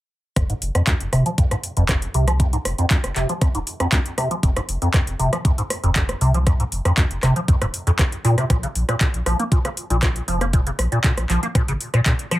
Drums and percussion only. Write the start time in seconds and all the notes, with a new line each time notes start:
0.36 kick, cross-stick, closed hi-hat
0.50 closed hi-hat
0.62 open hi-hat
0.75 cross-stick, closed hi-hat
0.87 kick, clap, closed hi-hat
1.00 closed hi-hat
1.13 cross-stick, open hi-hat
1.26 closed hi-hat
1.38 kick, closed hi-hat
1.51 cross-stick, closed hi-hat
1.63 open hi-hat
1.77 closed hi-hat
1.89 kick, cross-stick, clap, closed hi-hat
2.02 closed hi-hat
2.14 open hi-hat
2.28 cross-stick, closed hi-hat
2.40 kick, closed hi-hat
2.53 closed hi-hat
2.65 cross-stick, open hi-hat
2.78 closed hi-hat
2.91 kick, clap, closed hi-hat
3.04 cross-stick, closed hi-hat
3.16 clap, open hi-hat
3.29 closed hi-hat
3.41 kick, cross-stick, closed hi-hat
3.55 closed hi-hat
3.67 open hi-hat
3.80 cross-stick, closed hi-hat
3.92 kick, clap, closed hi-hat
4.06 closed hi-hat
4.18 cross-stick, open hi-hat
4.31 closed hi-hat
4.43 kick, closed hi-hat
4.56 cross-stick, closed hi-hat
4.69 open hi-hat
4.82 closed hi-hat
4.94 kick, cross-stick, clap, closed hi-hat
5.07 closed hi-hat
5.20 open hi-hat
5.33 cross-stick, closed hi-hat
5.45 kick, closed hi-hat
5.58 closed hi-hat
5.70 cross-stick, open hi-hat
5.84 closed hi-hat
5.96 kick, clap, closed hi-hat
6.09 cross-stick, closed hi-hat
6.21 open hi-hat
6.34 closed hi-hat
6.47 kick, cross-stick, closed hi-hat
6.60 closed hi-hat
6.72 open hi-hat
6.85 cross-stick, closed hi-hat
6.97 kick, clap, closed hi-hat
7.11 closed hi-hat
7.23 cross-stick, clap, open hi-hat
7.36 closed hi-hat
7.48 kick, closed hi-hat
7.62 cross-stick, closed hi-hat
7.74 open hi-hat
7.87 closed hi-hat
7.99 kick, cross-stick, clap, closed hi-hat
8.12 closed hi-hat
8.25 open hi-hat
8.38 cross-stick, closed hi-hat
8.50 kick, cross-stick, closed hi-hat
8.63 closed hi-hat
8.75 open hi-hat
8.89 cross-stick, closed hi-hat
9.01 kick, clap, closed hi-hat
9.14 closed hi-hat
9.26 cross-stick, open hi-hat
9.40 closed hi-hat
9.52 kick, closed hi-hat
9.65 cross-stick, closed hi-hat
9.77 open hi-hat
9.90 closed hi-hat
10.03 kick, cross-stick, clap, closed hi-hat
10.16 closed hi-hat
10.28 open hi-hat
10.41 cross-stick, closed hi-hat
10.53 kick, closed hi-hat
10.67 closed hi-hat
10.79 cross-stick, open hi-hat
10.92 closed hi-hat
11.04 kick, clap, closed hi-hat
11.17 cross-stick, closed hi-hat
11.30 clap, open hi-hat
11.43 closed hi-hat
11.55 kick, cross-stick, closed hi-hat
11.68 closed hi-hat
11.81 open hi-hat
11.94 cross-stick, closed hi-hat
12.06 kick, clap, closed hi-hat
12.19 closed hi-hat
12.31 cross-stick, open hi-hat